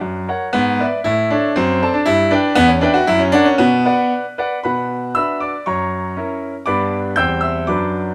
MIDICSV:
0, 0, Header, 1, 2, 480
1, 0, Start_track
1, 0, Key_signature, 2, "minor"
1, 0, Tempo, 510638
1, 496, Time_signature, 2, 2, 24, 8
1, 2886, Tempo, 523560
1, 4326, Tempo, 508044
1, 7637, End_track
2, 0, Start_track
2, 0, Title_t, "Grand piano"
2, 0, Program_c, 0, 0
2, 11, Note_on_c, 0, 42, 63
2, 247, Note_off_c, 0, 42, 0
2, 265, Note_on_c, 0, 70, 48
2, 270, Note_on_c, 0, 73, 54
2, 272, Note_on_c, 0, 78, 53
2, 436, Note_off_c, 0, 70, 0
2, 440, Note_off_c, 0, 73, 0
2, 441, Note_off_c, 0, 78, 0
2, 496, Note_on_c, 0, 59, 105
2, 507, Note_on_c, 0, 44, 77
2, 738, Note_off_c, 0, 44, 0
2, 749, Note_on_c, 0, 71, 55
2, 756, Note_on_c, 0, 74, 58
2, 756, Note_on_c, 0, 76, 61
2, 788, Note_off_c, 0, 59, 0
2, 921, Note_off_c, 0, 71, 0
2, 925, Note_off_c, 0, 74, 0
2, 926, Note_off_c, 0, 76, 0
2, 980, Note_on_c, 0, 64, 104
2, 990, Note_on_c, 0, 45, 69
2, 1199, Note_off_c, 0, 64, 0
2, 1221, Note_off_c, 0, 45, 0
2, 1225, Note_on_c, 0, 62, 92
2, 1234, Note_on_c, 0, 69, 57
2, 1239, Note_on_c, 0, 73, 57
2, 1244, Note_on_c, 0, 76, 64
2, 1403, Note_off_c, 0, 69, 0
2, 1406, Note_off_c, 0, 73, 0
2, 1410, Note_off_c, 0, 76, 0
2, 1441, Note_off_c, 0, 62, 0
2, 1464, Note_on_c, 0, 60, 98
2, 1476, Note_on_c, 0, 42, 85
2, 1701, Note_off_c, 0, 42, 0
2, 1709, Note_on_c, 0, 69, 58
2, 1712, Note_on_c, 0, 74, 54
2, 1717, Note_on_c, 0, 81, 72
2, 1785, Note_off_c, 0, 60, 0
2, 1817, Note_on_c, 0, 62, 84
2, 1877, Note_off_c, 0, 69, 0
2, 1879, Note_off_c, 0, 74, 0
2, 1882, Note_off_c, 0, 81, 0
2, 1932, Note_on_c, 0, 64, 118
2, 1937, Note_off_c, 0, 62, 0
2, 1943, Note_on_c, 0, 43, 81
2, 2169, Note_off_c, 0, 43, 0
2, 2169, Note_on_c, 0, 62, 96
2, 2170, Note_off_c, 0, 64, 0
2, 2176, Note_on_c, 0, 71, 66
2, 2183, Note_on_c, 0, 74, 61
2, 2186, Note_on_c, 0, 79, 76
2, 2345, Note_off_c, 0, 71, 0
2, 2350, Note_off_c, 0, 74, 0
2, 2351, Note_off_c, 0, 79, 0
2, 2383, Note_off_c, 0, 62, 0
2, 2401, Note_on_c, 0, 59, 127
2, 2413, Note_on_c, 0, 40, 86
2, 2522, Note_on_c, 0, 61, 77
2, 2524, Note_off_c, 0, 59, 0
2, 2642, Note_off_c, 0, 40, 0
2, 2642, Note_on_c, 0, 62, 94
2, 2644, Note_off_c, 0, 61, 0
2, 2654, Note_on_c, 0, 71, 69
2, 2656, Note_on_c, 0, 76, 71
2, 2662, Note_on_c, 0, 79, 78
2, 2761, Note_on_c, 0, 66, 101
2, 2765, Note_off_c, 0, 62, 0
2, 2824, Note_off_c, 0, 71, 0
2, 2825, Note_off_c, 0, 76, 0
2, 2829, Note_off_c, 0, 79, 0
2, 2884, Note_off_c, 0, 66, 0
2, 2889, Note_on_c, 0, 64, 118
2, 2895, Note_on_c, 0, 42, 83
2, 2998, Note_on_c, 0, 61, 92
2, 3005, Note_off_c, 0, 64, 0
2, 3116, Note_on_c, 0, 62, 122
2, 3119, Note_off_c, 0, 42, 0
2, 3119, Note_off_c, 0, 61, 0
2, 3125, Note_on_c, 0, 70, 65
2, 3129, Note_on_c, 0, 73, 63
2, 3134, Note_on_c, 0, 78, 73
2, 3237, Note_on_c, 0, 61, 95
2, 3238, Note_off_c, 0, 62, 0
2, 3297, Note_off_c, 0, 70, 0
2, 3299, Note_off_c, 0, 73, 0
2, 3302, Note_off_c, 0, 78, 0
2, 3355, Note_on_c, 0, 59, 103
2, 3359, Note_off_c, 0, 61, 0
2, 3365, Note_on_c, 0, 47, 81
2, 3598, Note_off_c, 0, 47, 0
2, 3604, Note_on_c, 0, 71, 64
2, 3609, Note_on_c, 0, 74, 62
2, 3611, Note_on_c, 0, 78, 61
2, 3843, Note_off_c, 0, 59, 0
2, 3952, Note_off_c, 0, 71, 0
2, 3955, Note_off_c, 0, 74, 0
2, 3956, Note_off_c, 0, 78, 0
2, 4089, Note_on_c, 0, 71, 58
2, 4093, Note_on_c, 0, 74, 57
2, 4096, Note_on_c, 0, 78, 58
2, 4261, Note_off_c, 0, 71, 0
2, 4263, Note_off_c, 0, 74, 0
2, 4265, Note_off_c, 0, 78, 0
2, 4320, Note_on_c, 0, 83, 69
2, 4330, Note_on_c, 0, 71, 53
2, 4331, Note_on_c, 0, 47, 56
2, 4333, Note_on_c, 0, 78, 48
2, 4777, Note_off_c, 0, 71, 0
2, 4779, Note_off_c, 0, 78, 0
2, 4797, Note_off_c, 0, 47, 0
2, 4801, Note_off_c, 0, 83, 0
2, 4805, Note_on_c, 0, 88, 84
2, 4814, Note_on_c, 0, 62, 39
2, 4816, Note_on_c, 0, 66, 40
2, 4816, Note_on_c, 0, 83, 59
2, 4817, Note_on_c, 0, 76, 55
2, 4824, Note_on_c, 0, 71, 39
2, 5035, Note_off_c, 0, 83, 0
2, 5036, Note_off_c, 0, 76, 0
2, 5047, Note_off_c, 0, 88, 0
2, 5047, Note_on_c, 0, 86, 59
2, 5062, Note_on_c, 0, 74, 52
2, 5157, Note_off_c, 0, 62, 0
2, 5158, Note_off_c, 0, 66, 0
2, 5164, Note_off_c, 0, 71, 0
2, 5191, Note_off_c, 0, 86, 0
2, 5279, Note_off_c, 0, 74, 0
2, 5289, Note_on_c, 0, 85, 73
2, 5297, Note_on_c, 0, 42, 56
2, 5298, Note_on_c, 0, 82, 56
2, 5301, Note_on_c, 0, 73, 56
2, 5755, Note_off_c, 0, 42, 0
2, 5767, Note_on_c, 0, 61, 52
2, 5772, Note_on_c, 0, 64, 46
2, 5775, Note_on_c, 0, 70, 46
2, 5965, Note_off_c, 0, 85, 0
2, 5969, Note_off_c, 0, 82, 0
2, 5971, Note_off_c, 0, 73, 0
2, 6108, Note_off_c, 0, 61, 0
2, 6111, Note_off_c, 0, 64, 0
2, 6112, Note_off_c, 0, 70, 0
2, 6230, Note_on_c, 0, 86, 81
2, 6240, Note_on_c, 0, 43, 66
2, 6240, Note_on_c, 0, 74, 58
2, 6242, Note_on_c, 0, 59, 50
2, 6243, Note_on_c, 0, 83, 65
2, 6246, Note_on_c, 0, 62, 53
2, 6249, Note_on_c, 0, 71, 46
2, 6515, Note_off_c, 0, 86, 0
2, 6674, Note_off_c, 0, 59, 0
2, 6676, Note_off_c, 0, 62, 0
2, 6678, Note_off_c, 0, 71, 0
2, 6678, Note_off_c, 0, 74, 0
2, 6680, Note_off_c, 0, 83, 0
2, 6697, Note_off_c, 0, 43, 0
2, 6704, Note_on_c, 0, 91, 81
2, 6713, Note_on_c, 0, 55, 39
2, 6714, Note_on_c, 0, 40, 59
2, 6717, Note_on_c, 0, 79, 60
2, 6717, Note_on_c, 0, 88, 65
2, 6720, Note_on_c, 0, 60, 45
2, 6723, Note_on_c, 0, 72, 38
2, 6926, Note_off_c, 0, 88, 0
2, 6936, Note_off_c, 0, 79, 0
2, 6940, Note_on_c, 0, 88, 65
2, 6946, Note_off_c, 0, 91, 0
2, 6953, Note_on_c, 0, 76, 53
2, 7156, Note_off_c, 0, 55, 0
2, 7160, Note_off_c, 0, 60, 0
2, 7162, Note_off_c, 0, 72, 0
2, 7164, Note_off_c, 0, 88, 0
2, 7178, Note_off_c, 0, 76, 0
2, 7180, Note_off_c, 0, 40, 0
2, 7189, Note_on_c, 0, 86, 68
2, 7197, Note_on_c, 0, 54, 41
2, 7199, Note_on_c, 0, 42, 58
2, 7199, Note_on_c, 0, 74, 47
2, 7200, Note_on_c, 0, 83, 46
2, 7203, Note_on_c, 0, 62, 42
2, 7210, Note_on_c, 0, 71, 39
2, 7487, Note_off_c, 0, 86, 0
2, 7637, Note_off_c, 0, 42, 0
2, 7637, Note_off_c, 0, 54, 0
2, 7637, Note_off_c, 0, 62, 0
2, 7637, Note_off_c, 0, 71, 0
2, 7637, Note_off_c, 0, 74, 0
2, 7637, Note_off_c, 0, 83, 0
2, 7637, End_track
0, 0, End_of_file